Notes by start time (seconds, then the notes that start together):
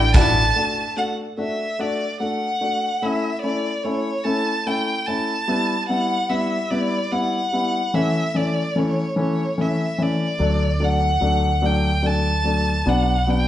Already playing: A1 E3 A3 D4 F#4 G5
0.14 A3 D4 E4 F#4 A5, kick, closed hi-hat
0.56 A3 D4 F#4
0.97 A3 D4 F#4 F#5
1.37 A3 D4 F#4 E5
1.79 A3 D4 F#4 D5
2.20 A3 D4 F#4 F#5
2.61 A3 D4 F#4
3.02 A3 C#4 E4 E5
3.42 A3 C#4 E4 D5
3.83 A3 C#4 E4 C#5
4.24 A3 C#4 E4 A5
4.66 A3 C#4 E4 G5
5.06 A3 C#4 E4 A5
5.48 G3 B3 E4
5.89 G3 B3 E4 F#5
6.30 G3 B3 E4 E5
6.70 G3 B3 E4 D5
7.11 G3 B3 E4 F#5
7.53 G3 B3 E4
7.94 E3 A3 C#4 E5
8.35 E3 A3 C#4 D5
8.76 E3 A3 C#4 C#5
9.16 E3 A3 C#4 C#5
9.58 E3 A3 C#4 E5
9.98 E3 A3 C#4 D5
10.39 D2 F#3 A3 D4
10.80 F#3 A3 D4 F#5
11.21 D2 F#3 A3 D4
11.62 F#3 A3 D4 G5
12.02 F#3 A3 D4
12.06 A5
12.44 F#3 A3 D4
12.86 B1 F#3 B3 D4 F#5
13.27 F#3 B3 D4 G5